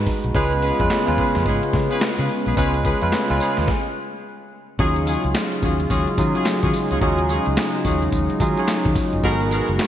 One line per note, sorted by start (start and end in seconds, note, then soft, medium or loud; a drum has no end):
0.00 0.35 G#3 medium
0.00 0.37 D#4 medium
0.00 0.37 F#4 medium
0.00 0.36 B4 loud
0.06 kick loud
0.06 open hi-hat medium
0.24 0.33 B1 medium
0.24 closed hi-hat medium
0.34 0.71 C#2 loud
0.34 3.65 C#3 medium
0.34 3.65 G#3 medium
0.34 0.62 G#3 medium
0.34 3.65 B3 medium
0.34 0.53 C#4 medium
0.34 0.62 C#4 medium
0.34 0.53 F4 medium
0.34 3.65 F4 medium
0.34 0.62 F4 medium
0.34 0.53 G#4 medium
0.34 0.53 B4 loud
0.34 0.62 B4 loud
0.34 kick loud
0.34 closed hi-hat medium
0.51 closed hi-hat medium
0.62 0.80 C#4 medium
0.62 0.81 F4 medium
0.62 0.81 G#4 medium
0.62 0.81 B4 medium
0.62 closed hi-hat medium
0.79 0.88 F2 medium
0.79 0.95 G#3 medium
0.79 0.95 C#4 medium
0.79 0.96 F4 medium
0.79 0.96 B4 medium
0.79 kick loud
0.79 closed hi-hat medium
0.90 snare loud
0.90 clap loud
0.90 closed hi-hat medium
1.07 1.16 D#2 medium
1.07 1.76 G#3 medium
1.07 1.76 C#4 medium
1.07 1.76 F4 medium
1.07 1.76 B4 medium
1.07 closed hi-hat medium
1.18 1.36 C#4 medium
1.18 1.36 F4 medium
1.18 1.36 G#4 medium
1.18 1.36 B4 medium
1.18 kick medium
1.18 closed hi-hat medium
1.35 1.44 F2 medium
1.35 snare medium
1.35 closed hi-hat medium
1.46 1.60 G#2 loud
1.46 1.64 C#4 medium
1.46 1.64 F4 medium
1.46 1.64 G#4 medium
1.46 1.64 B4 medium
1.46 kick medium
1.46 closed hi-hat medium
1.63 closed hi-hat medium
1.73 1.87 C#3 loud
1.73 kick medium
1.73 snare medium
1.73 closed hi-hat medium
1.91 2.03 C#4 medium
1.91 2.03 F4 medium
1.91 2.03 G#4 medium
1.91 2.03 B4 medium
1.91 closed hi-hat medium
2.01 snare loud
2.01 clap medium
2.01 closed hi-hat medium
2.18 2.27 C#3 loud
2.18 2.30 C#4 medium
2.18 2.31 F4 medium
2.18 2.31 G#4 medium
2.18 2.31 B4 medium
2.18 closed hi-hat medium
2.29 open hi-hat medium
2.46 2.55 B1 medium
2.46 2.56 C#4 medium
2.46 2.56 F4 medium
2.46 2.56 G#4 medium
2.46 2.56 B4 medium
2.46 closed hi-hat medium
2.57 2.93 C#2 loud
2.57 2.84 G#3 medium
2.57 2.75 C#4 medium
2.57 2.84 C#4 medium
2.57 2.75 F4 medium
2.57 2.84 F4 medium
2.57 2.75 G#4 medium
2.57 2.75 B4 loud
2.57 2.84 B4 loud
2.57 kick loud
2.57 closed hi-hat medium
2.57 tambourine medium
2.74 closed hi-hat medium
2.85 3.03 C#4 medium
2.85 3.03 F4 medium
2.85 3.03 G#4 medium
2.85 3.03 B4 medium
2.85 kick loud
2.85 closed hi-hat medium
2.85 tambourine medium
3.02 3.11 F2 medium
3.02 3.17 G#3 medium
3.02 3.17 C#4 medium
3.02 3.18 F4 medium
3.02 3.18 B4 loud
3.02 closed hi-hat medium
3.12 snare loud
3.12 clap medium
3.12 closed hi-hat medium
3.12 tambourine loud
3.30 3.38 C#2 loud
3.30 3.68 G#3 medium
3.30 3.68 C#4 medium
3.30 3.68 F4 medium
3.30 3.69 B4 medium
3.30 closed hi-hat medium
3.40 3.58 C#4 medium
3.40 3.58 F4 medium
3.40 3.58 G#4 medium
3.40 3.59 B4 medium
3.40 open hi-hat medium
3.40 tambourine medium
3.57 3.66 D#2 medium
3.57 snare medium
3.57 closed hi-hat medium
3.68 kick loud
3.68 snare medium
4.79 5.15 D#2 loud
4.79 9.20 C#3 medium
4.79 5.53 F#3 medium
4.79 9.20 F#3 medium
4.79 9.20 G#3 medium
4.79 4.97 C#4 loud
4.79 5.53 C#4 medium
4.79 5.53 D#4 medium
4.79 4.97 F4 medium
4.79 6.99 F4 medium
4.79 5.54 F4 medium
4.79 4.97 F#4 medium
4.79 4.97 G#4 loud
4.79 5.54 G#4 medium
4.79 kick loud
4.79 closed hi-hat medium
4.96 closed hi-hat medium
5.06 5.25 C#4 medium
5.06 5.25 F4 medium
5.06 5.25 F#4 medium
5.06 5.25 G#4 medium
5.06 closed hi-hat medium
5.06 tambourine medium
5.24 5.33 C#2 medium
5.24 closed hi-hat medium
5.35 snare loud
5.35 clap loud
5.35 closed hi-hat medium
5.35 tambourine loud
5.52 closed hi-hat medium
5.62 5.85 D#2 medium
5.62 5.80 C#4 medium
5.62 5.81 F4 medium
5.62 5.81 F#4 medium
5.62 5.81 G#4 medium
5.62 kick medium
5.62 closed hi-hat medium
5.62 tambourine medium
5.80 closed hi-hat medium
5.90 6.04 D#2 loud
5.90 6.08 C#4 medium
5.90 6.08 F4 medium
5.90 6.08 F#4 medium
5.90 6.08 G#4 medium
5.90 kick medium
5.90 closed hi-hat medium
5.90 tambourine medium
6.07 closed hi-hat medium
6.18 6.32 D#3 loud
6.18 6.72 F#3 medium
6.18 6.72 C#4 medium
6.18 6.72 D#4 medium
6.18 6.72 F4 medium
6.18 6.73 G#4 medium
6.18 kick medium
6.18 closed hi-hat medium
6.18 tambourine medium
6.35 6.47 C#4 medium
6.35 6.47 F4 medium
6.35 6.47 F#4 medium
6.35 6.47 G#4 medium
6.35 closed hi-hat medium
6.46 snare loud
6.46 clap loud
6.46 closed hi-hat medium
6.46 tambourine medium
6.63 6.72 D#3 loud
6.63 6.75 C#4 medium
6.63 6.75 F4 medium
6.63 6.75 F#4 medium
6.63 6.75 G#4 medium
6.63 kick medium
6.63 closed hi-hat medium
6.73 open hi-hat medium
6.73 tambourine medium
6.91 7.00 C#2 medium
6.91 7.00 C#4 medium
6.91 7.00 F4 medium
6.91 7.00 F#4 medium
6.91 7.00 G#4 medium
6.91 closed hi-hat medium
7.01 7.37 D#2 loud
7.01 7.75 F#3 medium
7.01 7.19 C#4 medium
7.01 7.75 C#4 medium
7.01 9.21 D#4 medium
7.01 7.76 D#4 medium
7.01 7.19 F4 medium
7.01 7.76 F4 medium
7.01 7.19 F#4 medium
7.01 7.20 G#4 loud
7.01 7.76 G#4 medium
7.01 kick loud
7.01 closed hi-hat medium
7.18 closed hi-hat medium
7.29 7.47 C#4 medium
7.29 7.47 F4 medium
7.29 7.47 F#4 medium
7.29 7.47 G#4 medium
7.29 closed hi-hat medium
7.29 tambourine medium
7.46 7.55 C#2 medium
7.46 closed hi-hat soft
7.57 snare loud
7.57 clap loud
7.57 closed hi-hat medium
7.57 tambourine loud
7.74 closed hi-hat medium
7.85 8.07 D#2 medium
7.85 8.03 C#4 medium
7.85 8.03 F4 medium
7.85 8.03 F#4 medium
7.85 8.03 G#4 medium
7.85 kick medium
7.85 closed hi-hat medium
7.85 tambourine medium
8.02 closed hi-hat medium
8.12 8.26 D#2 loud
8.12 kick medium
8.12 closed hi-hat medium
8.12 tambourine medium
8.30 closed hi-hat medium
8.40 8.54 D#3 loud
8.40 8.94 F#3 medium
8.40 8.94 C#4 medium
8.40 8.94 D#4 medium
8.40 8.95 F4 medium
8.40 8.95 G#4 loud
8.40 kick medium
8.40 closed hi-hat medium
8.40 tambourine medium
8.57 8.69 C#4 medium
8.57 8.70 F4 medium
8.57 8.70 F#4 medium
8.57 8.70 G#4 medium
8.57 closed hi-hat medium
8.68 snare loud
8.68 clap loud
8.68 closed hi-hat medium
8.68 tambourine loud
8.85 8.94 D#3 loud
8.85 kick medium
8.85 closed hi-hat medium
8.95 kick loud
8.95 open hi-hat medium
8.95 tambourine medium
9.13 9.22 F#1 loud
9.13 closed hi-hat medium
9.23 9.59 G#1 loud
9.23 9.87 B2 medium
9.23 9.87 G#3 medium
9.23 9.41 B3 loud
9.23 9.87 B3 medium
9.23 9.87 D#4 medium
9.23 9.42 F#4 medium
9.23 9.87 F#4 medium
9.23 9.42 G#4 medium
9.23 9.32 A4 medium
9.23 9.87 A#4 medium
9.23 9.42 A#4 loud
9.23 kick loud
9.23 closed hi-hat medium
9.32 9.87 A#4 medium
9.41 closed hi-hat medium
9.51 9.69 B3 medium
9.51 9.69 F#4 medium
9.51 9.70 G#4 medium
9.51 9.70 A#4 medium
9.51 closed hi-hat medium
9.51 tambourine medium
9.68 9.77 F#1 loud
9.68 closed hi-hat medium
9.79 snare loud
9.79 clap loud
9.79 closed hi-hat medium
9.79 tambourine medium